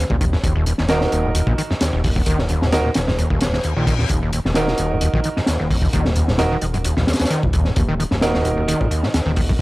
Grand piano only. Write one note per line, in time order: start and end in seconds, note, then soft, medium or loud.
0.89 2.70 D#4 medium
0.89 2.70 F#4 medium
0.89 2.70 A#4 medium
2.72 2.87 D#4 medium
2.72 2.87 F#4 medium
2.72 2.86 A#4 loud
4.56 6.36 D#4 medium
4.56 6.36 F#4 medium
4.56 6.36 A#4 medium
6.39 6.53 D#4 medium
6.39 6.53 F#4 medium
6.39 6.53 A#4 loud
8.22 9.61 D#4 medium
8.22 9.61 F#4 medium
8.22 9.61 A#4 medium